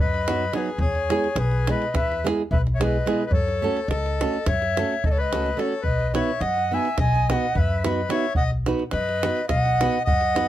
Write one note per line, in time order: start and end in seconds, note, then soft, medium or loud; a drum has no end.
0.00 0.46 F#2 loud
0.00 0.54 B4 medium
0.00 0.59 D#5 medium
0.14 davul high soft
0.28 0.43 F#3 soft
0.28 0.43 B3 soft
0.28 0.43 D#4 soft
0.28 0.44 F#4 medium
0.28 davul high medium
0.53 0.68 F#3 medium
0.53 0.69 B3 medium
0.53 0.69 D#4 medium
0.53 0.69 F#4 medium
0.53 0.79 G#4 medium
0.53 davul high medium
0.57 0.83 B4 medium
0.78 1.13 E2 loud
0.78 1.37 G#4 medium
0.78 1.40 C#5 medium
0.78 davul low medium
0.95 davul high soft
1.10 1.26 G#3 medium
1.10 1.26 B3 medium
1.10 1.26 E4 medium
1.10 1.27 G#4 medium
1.10 davul high medium
1.24 davul high soft
1.36 1.70 B1 medium
1.36 1.69 G#4 medium
1.36 1.71 B4 medium
1.36 davul high medium
1.51 davul high soft
1.67 1.83 G#3 medium
1.67 1.84 B3 soft
1.67 1.84 E4 soft
1.67 1.84 G#4 medium
1.67 1.94 B4 medium
1.67 1.97 D#5 medium
1.67 davul high medium
1.82 davul high soft
1.94 2.29 E2 medium
1.94 2.26 B4 medium
1.94 2.26 E5 loud
1.94 davul high medium
1.94 davul low medium
2.12 davul high soft
2.24 2.41 G#3 medium
2.24 2.41 B3 medium
2.24 2.41 E4 medium
2.24 2.42 G#4 medium
2.24 davul high medium
2.51 2.99 B1 medium
2.51 2.62 B4 medium
2.51 2.57 E5 medium
2.51 davul low medium
2.67 davul high soft
2.74 2.81 C#5 medium
2.74 2.81 E5 medium
2.80 2.96 G#3 medium
2.80 2.96 B3 medium
2.80 2.96 E4 soft
2.80 2.96 G#4 medium
2.80 3.25 B4 medium
2.80 3.25 D#5 medium
2.80 davul high medium
3.06 3.21 G#3 medium
3.06 3.22 B3 medium
3.06 3.22 E4 medium
3.06 3.22 G#4 medium
3.06 davul high medium
3.25 3.32 B4 medium
3.25 3.33 D#5 medium
3.31 3.65 F#2 medium
3.31 3.88 A4 medium
3.31 3.90 C#5 medium
3.31 davul low medium
3.48 davul high soft
3.62 3.78 A3 medium
3.62 3.79 C#4 medium
3.62 3.79 F#4 medium
3.62 3.79 A4 medium
3.77 davul high soft
3.88 4.23 C#2 loud
3.88 4.47 A4 medium
3.88 4.48 D#5 medium
3.88 davul high medium
4.06 davul high soft
4.21 4.36 A3 medium
4.21 4.36 C#4 medium
4.21 4.37 F#4 soft
4.21 4.37 A4 medium
4.21 davul high medium
4.34 davul high soft
4.46 4.81 F#2 loud
4.46 5.04 C#5 medium
4.46 5.07 E5 loud
4.46 davul high medium
4.46 davul low medium
4.62 davul high soft
4.77 4.93 A3 medium
4.77 4.94 C#4 medium
4.77 4.94 F#4 medium
4.77 4.94 A4 medium
4.77 davul high medium
5.04 5.52 C#2 medium
5.04 5.09 A4 medium
5.04 5.13 D#5 medium
5.04 davul low loud
5.10 5.18 A4 medium
5.10 5.22 C#5 medium
5.18 5.58 B4 medium
5.18 5.62 D#5 medium
5.33 5.48 A3 soft
5.33 5.48 C#4 medium
5.33 5.49 F#4 medium
5.33 5.49 A4 medium
5.33 davul high medium
5.46 davul high soft
5.57 5.73 A3 medium
5.57 5.73 C#4 soft
5.57 5.73 F#4 medium
5.57 5.83 A4 medium
5.57 5.74 A4 medium
5.57 5.83 C#5 medium
5.57 davul high medium
5.72 davul high soft
5.82 6.18 B1 medium
5.82 6.12 B4 medium
5.82 6.18 D#5 medium
5.82 davul low medium
6.00 davul high soft
6.14 6.30 B3 medium
6.14 6.30 D#4 medium
6.14 6.30 F#4 medium
6.14 6.31 B4 medium
6.14 6.41 C#5 medium
6.14 6.42 E5 medium
6.14 davul high medium
6.29 davul high soft
6.41 6.75 F#2 medium
6.41 6.72 D#5 medium
6.41 6.76 F#5 loud
6.41 davul high medium
6.57 davul high soft
6.71 6.87 B3 medium
6.71 6.88 D#4 soft
6.71 6.88 F#4 medium
6.71 6.88 B4 medium
6.71 6.99 E5 medium
6.71 6.99 G#5 medium
6.85 davul high soft
6.98 7.32 B1 medium
6.98 7.28 D#5 medium
6.98 7.34 G#5 loud
6.98 davul high medium
6.98 davul low medium
7.15 davul high soft
7.29 7.45 B3 medium
7.29 7.45 D#4 medium
7.29 7.46 F#4 medium
7.29 7.46 B4 medium
7.29 7.55 D#5 medium
7.29 7.61 F#5 medium
7.29 davul high medium
7.55 8.03 F#2 medium
7.55 7.83 B4 medium
7.55 7.90 E5 medium
7.55 davul low medium
7.84 8.00 B3 medium
7.84 8.00 D#4 soft
7.84 8.00 F#4 medium
7.84 8.10 B4 medium
7.84 8.01 B4 medium
7.84 8.11 D#5 medium
7.84 davul high medium
8.09 8.25 B3 medium
8.09 8.25 D#4 medium
8.09 8.25 F#4 medium
8.09 8.25 B4 medium
8.09 8.33 C#5 medium
8.09 8.34 E5 medium
8.09 davul high medium
8.35 8.70 B1 medium
8.35 8.51 D#5 medium
8.35 8.43 F#5 medium
8.35 davul low medium
8.51 davul high soft
8.66 8.82 B3 medium
8.66 8.82 D#4 medium
8.66 8.82 F#4 medium
8.66 8.83 B4 medium
8.66 davul high medium
8.79 davul high soft
8.91 9.27 F#2 medium
8.91 9.45 B4 medium
8.91 9.46 D#5 loud
8.91 davul high medium
9.09 davul high soft
9.23 9.39 B3 medium
9.23 9.40 D#4 medium
9.23 9.40 F#4 medium
9.23 9.40 B4 medium
9.23 davul high medium
9.37 davul high soft
9.48 9.84 B1 medium
9.48 10.03 D#5 medium
9.48 10.02 F#5 loud
9.48 davul high medium
9.48 davul low medium
9.66 davul high soft
9.81 9.97 B3 medium
9.81 9.97 D#4 medium
9.81 9.97 F#4 medium
9.81 9.98 B4 medium
9.81 davul high medium
10.05 10.48 F#2 medium
10.05 10.48 D#5 loud
10.05 10.48 F#5 medium
10.05 davul low medium
10.21 davul high soft
10.35 10.48 B3 medium
10.35 10.48 D#4 soft
10.35 10.48 F#4 soft
10.35 10.48 B4 medium
10.35 davul high medium